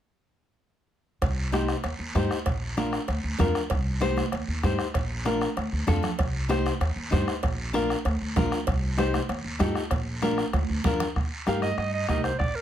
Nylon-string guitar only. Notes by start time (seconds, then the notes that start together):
1.52 D#4 G4 C5
2.15 D#4 G4 C5
2.77 D4 F4 A#4
3.39 D4 F4 A#4
4.00 D#4 G4 C5
4.63 D#4 G4 C5
5.25 D4 F4 A#4
5.87 D4 F4 A4
6.49 D#4 G4 C5
7.11 D#4 G4 C5
7.73 D4 F4 A#4
8.36 D4 F4 A#4
8.97 D#4 G4 C5
9.59 D#4 G4 A4
10.22 D4 F4 A#4
10.85 D4 F4 A#4
11.46 D#4 G4 A#4
12.08 D#4 G4 A#4